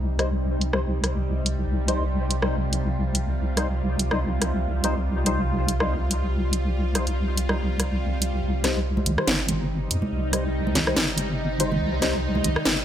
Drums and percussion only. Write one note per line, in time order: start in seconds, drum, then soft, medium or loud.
0.19 cross-stick medium
0.19 closed hi-hat medium
0.61 closed hi-hat medium
0.73 cross-stick medium
1.04 cross-stick medium
1.04 closed hi-hat medium
1.46 closed hi-hat medium
1.88 closed hi-hat medium
2.31 closed hi-hat medium
2.42 cross-stick medium
2.73 closed hi-hat medium
3.15 closed hi-hat medium
3.57 cross-stick medium
3.57 closed hi-hat medium
3.99 closed hi-hat medium
4.11 cross-stick medium
4.42 cross-stick medium
4.42 closed hi-hat medium
4.84 closed hi-hat medium
5.26 closed hi-hat medium
5.68 closed hi-hat medium
5.80 cross-stick medium
6.11 closed hi-hat medium
6.53 closed hi-hat medium
6.95 cross-stick medium
6.95 closed hi-hat medium
7.07 closed hi-hat soft
7.37 closed hi-hat medium
7.49 cross-stick medium
7.80 cross-stick medium
7.80 closed hi-hat medium
8.22 closed hi-hat medium
8.64 cross-stick medium
8.64 snare medium
8.64 closed hi-hat medium
8.97 high conga medium
9.06 closed hi-hat medium
9.06 low conga medium
9.18 cross-stick medium
9.27 snare loud
9.48 closed hi-hat medium
9.48 high conga medium
9.48 low conga medium
9.91 closed hi-hat medium
10.02 high conga medium
10.33 cross-stick medium
10.33 closed hi-hat medium
10.67 high conga medium
10.75 snare medium
10.75 closed hi-hat medium
10.75 low conga medium
10.87 cross-stick medium
10.96 snare loud
11.17 closed hi-hat medium
11.17 high conga medium
11.60 closed hi-hat medium
11.71 high conga medium
11.71 low conga medium
12.02 cross-stick medium
12.02 snare medium
12.02 closed hi-hat medium
12.35 high conga loud
12.44 closed hi-hat medium
12.44 low conga medium
12.56 cross-stick medium
12.65 snare loud